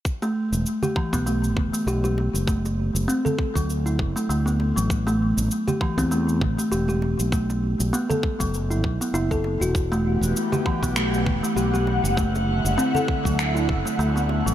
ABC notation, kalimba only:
X:1
M:4/4
L:1/16
Q:"Swing 16ths" 1/4=99
K:Em
V:1 name="Kalimba"
z A, z3 G E, B, A, z2 A, G G z2 | A, z3 C A z F,2 E z A, A, B, z F, | z A, z3 G E, C A, z2 A, G G z2 | A, z3 B, A z F,2 E z B, E A z F |
z A, z3 G E, B, A, z2 A, G G z2 | A, z3 C A z F,2 E z A, A, B, z F, |]